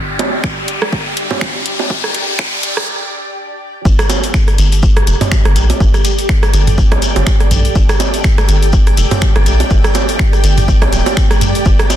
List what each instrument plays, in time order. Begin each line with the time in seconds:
Already playing: ambient pad G4 D5 G5, riser
0.19 closed hi-hat, low bongo
0.44 finger snap, kick
0.68 closed hi-hat
0.82 cross-stick
0.93 kick
1.17 closed hi-hat
1.31 mid tom, low bongo
1.41 finger snap, kick
1.66 closed hi-hat
1.79 low bongo
1.90 kick
2.04 cross-stick
2.15 closed hi-hat
2.39 finger snap, kick
2.63 closed hi-hat
2.77 cross-stick, mid tom
3.85 analog synth bass G1, synth texture A3 A4, ambient pad G4, kick, shekere
3.99 cross-stick, closed hi-hat, shekere
4.10 closed hi-hat, low bongo, shekere
4.23 closed hi-hat, shekere
4.34 finger snap, kick, shekere
4.47 cross-stick, closed hi-hat, shekere
4.58 analog synth bass G1, closed hi-hat, shekere
4.72 ambient pad D5, closed hi-hat, shekere
4.83 kick, shekere
4.97 cross-stick, closed hi-hat
5.07 analog synth bass F1, ambient pad G5, closed hi-hat, shekere
5.21 closed hi-hat, mid tom, low bongo, shekere
5.32 finger snap, kick, shekere
5.45 analog synth bass G1, cross-stick, closed hi-hat
5.56 analog synth bass A#1, closed hi-hat, shekere
5.70 closed hi-hat, low bongo, shekere
5.80 analog synth bass G1, kick, shekere
5.94 cross-stick, closed hi-hat, shekere
6.04 closed hi-hat, shekere
6.18 closed hi-hat, shekere
6.29 finger snap, kick, shekere
6.43 cross-stick, closed hi-hat, shekere
6.53 analog synth bass G1, closed hi-hat, shekere
6.67 closed hi-hat, mid tom, shekere
6.78 kick, shekere
6.92 analog synth bass A#1, cross-stick, closed hi-hat, low bongo
7.02 closed hi-hat, shekere
7.16 analog synth bass G1, closed hi-hat, low bongo
7.27 finger snap, kick, shekere
7.40 cross-stick, closed hi-hat
7.51 analog synth bass A#1, closed hi-hat, mid tom, shekere
7.65 closed hi-hat, shekere
7.75 analog synth bass G1, kick, shekere
7.89 cross-stick, closed hi-hat, shekere
8.00 closed hi-hat, low bongo, shekere
8.14 closed hi-hat, shekere
8.24 finger snap, kick, shekere
8.38 cross-stick, closed hi-hat, shekere
8.49 analog synth bass G1, closed hi-hat, shekere
8.63 closed hi-hat, shekere
8.72 kick, shekere
8.87 cross-stick, closed hi-hat
8.97 analog synth bass F1, closed hi-hat, shekere
9.11 closed hi-hat, mid tom, low bongo, shekere
9.21 finger snap, kick, shekere
9.36 analog synth bass G1, cross-stick, closed hi-hat
9.46 analog synth bass A#1, closed hi-hat, shekere
9.60 closed hi-hat, low bongo, shekere
9.70 analog synth bass G1, kick, shekere
9.84 cross-stick, closed hi-hat, shekere
9.94 closed hi-hat, low bongo, shekere
10.08 closed hi-hat, shekere
10.19 finger snap, kick, shekere
10.33 cross-stick, closed hi-hat, shekere
10.44 analog synth bass G1, closed hi-hat, shekere
10.57 closed hi-hat, mid tom, shekere
10.68 kick, shekere
10.82 analog synth bass A#1, cross-stick, closed hi-hat, low bongo
10.93 analog synth bass D1, closed hi-hat, shekere
11.06 closed hi-hat, low bongo, shekere
11.17 finger snap, kick, shekere
11.31 cross-stick, closed hi-hat, shekere
11.41 closed hi-hat, mid tom, shekere
11.55 closed hi-hat, shekere
11.65 analog synth bass G1, synth texture C4, kick, shekere
11.79 cross-stick, closed hi-hat, shekere
11.90 closed hi-hat, low bongo, shekere